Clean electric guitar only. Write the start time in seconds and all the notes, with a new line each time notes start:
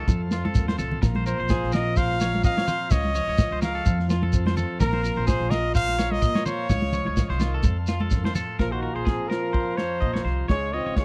0.00 A4
0.32 F4
0.45 A4
0.68 C5
0.79 A4
1.02 muted clean electric guitar stroke
1.16 C5
1.27 A#4
1.40 C5
1.50 G#4
1.73 A#4
1.97 C5
2.21 C#5
2.44 D#5
2.58 C#5
2.68 C5
2.92 C#5
3.15 C#5
3.29 C#5
3.52 C5
3.62 A#4
3.75 A4
4.10 F4
4.23 A4
4.47 C5
4.57 A4
4.80 A#4
4.94 C5
5.04 A#4
5.17 C5
5.27 G#4
5.50 A#4
5.75 C5
5.99 C#5
6.22 D#5
6.35 C#5
6.46 C5
6.70 C#5
6.94 C#5
7.07 C#5
7.30 C5
7.41 F4
7.54 A4
7.89 F4
8.01 A4
8.25 C5
8.35 A4
8.59 A#4
8.72 C5
8.83 A#4
8.96 C5
9.05 G#4
9.30 A#4
9.53 C5
9.77 C#5
10.01 D#5
10.14 C#5
10.25 C5
10.48 C#5
10.73 C#5
10.86 C#5